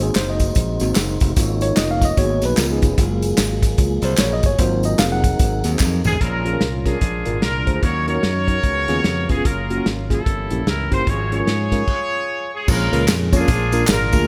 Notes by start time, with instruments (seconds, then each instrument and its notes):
Already playing: french horn section F#3 G#3 C4 D#4, tonewheel organ G#3 D#4 F#4 C5, tine electric piano A#3 C4 F#4
0.01 tine electric piano G#4, closed hi-hat
0.15 fingered electric bass F#1, tine electric piano C5, snare, clap, closed hi-hat, tambourine
0.30 tine electric piano D#5
0.39 kick, closed hi-hat, tambourine
0.55 fingered electric bass A#1, kick, closed hi-hat, tambourine
0.80 fingered electric bass G#1, tine electric piano A#3 C4 F#4, closed hi-hat, tambourine
0.95 fingered electric bass F#1, snare, clap, closed hi-hat, tambourine
1.20 fingered electric bass F1, kick, closed hi-hat, tambourine
1.36 fingered electric bass G#1, french horn section F3 A#3 C#4, tonewheel organ A#3 D#4 F4 C#5, tine electric piano A#3 D#4 F4, kick, closed hi-hat, tambourine
1.61 tine electric piano C#5, closed hi-hat, tambourine
1.77 fingered electric bass F1, tine electric piano D#5, snare, clap, closed hi-hat, tambourine
1.91 tine electric piano F5
2.02 tine electric piano D#5, kick, snare, closed hi-hat, tambourine
2.17 fingered electric bass G#1, french horn section B2 F#3 G#3, tonewheel organ G#3 D#4 F#4 G#4, tine electric piano A#3 B3 F#4 C#5, kick, closed hi-hat, tambourine
2.42 fingered electric bass B1, tine electric piano B4, snare, closed hi-hat, tambourine
2.57 fingered electric bass C#2, tonewheel organ F3 C#4 D#4 B4, french horn section F3 B3 C#4, tine electric piano B3 D#4 F4 A#4, snare, clap, closed hi-hat, tambourine
2.72 tine electric piano G#4
2.82 fingered electric bass F1, kick, closed hi-hat, tambourine
2.97 fingered electric bass F#1, tonewheel organ F#3 A#3 F4 F#4, french horn section F#3 G#3 A#3 G#4, tine electric piano G#3 A#3 F4, kick, closed hi-hat, tambourine
3.03 tonewheel organ G#4
3.22 closed hi-hat, tambourine
3.38 fingered electric bass G#1, snare, clap, closed hi-hat, tambourine
3.62 kick, snare, closed hi-hat, tambourine
3.78 fingered electric bass C#2, tine electric piano G#3 A#3 F4, kick, closed hi-hat, tambourine
4.02 fingered electric bass C2, tine electric piano C5, closed hi-hat, tambourine
4.17 fingered electric bass A#1, tine electric piano C#5, snare, clap, closed hi-hat, tambourine
4.33 tine electric piano D#5
4.43 fingered electric bass G1, tine electric piano C#5, kick, closed hi-hat, tambourine
4.58 fingered electric bass G#1, tine electric piano F#3 A#3 C4 F4 C5, tonewheel organ F#3 C4 D#4 A#4, french horn section C4, kick, closed hi-hat, tambourine
4.83 tine electric piano D#5, closed hi-hat, tambourine
4.99 fingered electric bass F1, tine electric piano F5, snare, clap, closed hi-hat, tambourine
5.12 tine electric piano F#5
5.24 kick, closed hi-hat, tambourine
5.39 fingered electric bass G#1, kick, closed hi-hat, tambourine
5.64 fingered electric bass D#2, snare, closed hi-hat, tambourine
5.79 fingered electric bass F2, kick, snare, clap, tambourine
6.04 fingered electric bass A1, horn section G#4, mid tom, tambourine
6.13 floor tom
6.20 fingered electric bass A#1, tine electric piano A#2, tonewheel organ G#3 C#4 F4 G#4, french horn section G#3 A#3 C#4 F4, horn section C#4 F4 A#4, kick, closed hi-hat
6.26 tonewheel organ A#4
6.45 tine electric piano C#4 F4 G#4 A#4, closed hi-hat
6.53 tine electric piano C#4 F4 G#4 A#4
6.61 fingered electric bass C2, snare, closed hi-hat
6.85 tine electric piano C#4 F4 G#4 A#4, horn section D4 F4 G#4, kick, snare, closed hi-hat
7.01 fingered electric bass A#1, tine electric piano A#2, tonewheel organ G#3 D4 F4 A#4, french horn section D4 F4, kick, closed hi-hat
7.25 fingered electric bass G#1, tine electric piano D4 F4 G#4 A#4, closed hi-hat
7.42 fingered electric bass C2, horn section D4 F4 A#4, snare, closed hi-hat
7.66 fingered electric bass D2, tine electric piano D4 F4 G#4 C5, kick, closed hi-hat
7.75 tine electric piano D4 F4 G#4 C5
7.82 fingered electric bass D#2, tine electric piano D#3, tonewheel organ F#3 C#4 D#4 G#4, french horn section F#3 C#4 D#4, horn section F#4 A#4 C#5, kick, closed hi-hat
7.87 tonewheel organ A#4
8.07 tine electric piano C#4 D#4 F#4 A#4, horn section F#4 A#4 C#5, closed hi-hat
8.15 tine electric piano C#4 D#4 F#4 A#4
8.23 fingered electric bass F#2, snare, closed hi-hat
8.48 tine electric piano C#4 D#4 F#4 C#5, kick, closed hi-hat
8.63 fingered electric bass C#2, tine electric piano C#3, french horn section G#3 B3 F5, tonewheel organ G#3 B3 C#4 F#4, kick, closed hi-hat
8.69 tonewheel organ G#4
8.88 fingered electric bass D#2, tine electric piano B3 C#4 F4 G#4, snare, closed hi-hat
9.04 fingered electric bass F2, snare, closed hi-hat
9.29 fingered electric bass F1, tine electric piano B3 C#4 F4 B4, horn section G#4, kick, closed hi-hat
9.37 tine electric piano B3 C#4 F4 G#4
9.45 fingered electric bass F#1, tonewheel organ F#3 A#3 C#4 F4, french horn section F#3 A#3, horn section C#4 F4 A#4, kick, closed hi-hat
9.70 tine electric piano A#3 C#4 F4 F#4, closed hi-hat
9.78 tine electric piano A#3 C#4 F4 F#4
9.86 fingered electric bass G#1, snare, closed hi-hat
10.10 tine electric piano A#3 C#4 F4 G#4, horn section C#4 E4 A4, kick, snare, closed hi-hat
10.25 fingered electric bass G1, tine electric piano G2, tonewheel organ E3 A#3 C#4 G4, french horn section G3 E4, kick, closed hi-hat
10.50 fingered electric bass A#1, tine electric piano A#3 C#4 E4 G4, closed hi-hat
10.67 fingered electric bass C#2, horn section A#4, snare, closed hi-hat
10.91 fingered electric bass G1, tine electric piano A#3 C#4 E4 G4, horn section C5, kick, closed hi-hat
10.99 tine electric piano A#3 C#4 E4 G4
11.06 fingered electric bass G#1, tine electric piano G#2, tonewheel organ D#3 G#3 C#4 G#4, french horn section F3 G#3 F4, horn section F4 G#4 C#5, kick, closed hi-hat
11.12 tonewheel organ F3
11.32 tine electric piano G#3 C#4 F4 G#4, horn section F4 G#4 C#5, closed hi-hat
11.39 tine electric piano G#3 C#4 F4 A#4
11.47 fingered electric bass G#2, snare, closed hi-hat
11.72 tine electric piano G#3 C#4 F4 A#4, kick, snare, closed hi-hat
11.88 kick, crash
12.54 horn section G#4
12.68 fingered electric bass A#1, tine electric piano A#2, tonewheel organ F3 G#3 A#3 C#4 G#4, horn section C#4 F4 A#4, kick, crash, tambourine
12.92 fingered electric bass C#2, tine electric piano A#3 C#4 F4 G#4 A#4, closed hi-hat, tambourine
13.08 fingered electric bass F2, snare, clap, closed hi-hat, tambourine
13.32 tine electric piano A#3 C#4 F4 G#4 C#5, horn section D4 F4 G#4, kick, closed hi-hat, tambourine
13.41 tine electric piano A#3 C#4 F4 G#4 A#4
13.48 fingered electric bass A#1, tine electric piano A#2, tonewheel organ F3 G#3 A#3 D4 G#4, kick, closed hi-hat, tambourine
13.72 tine electric piano A#3 D4 F4 G#4 A#4, closed hi-hat, tambourine
13.87 fingered electric bass G#1, horn section D4 F4 A#4, snare, clap, closed hi-hat, tambourine
14.13 fingered electric bass D2, tine electric piano A#3 D4 F4 G#4 A#4, kick, closed hi-hat, tambourine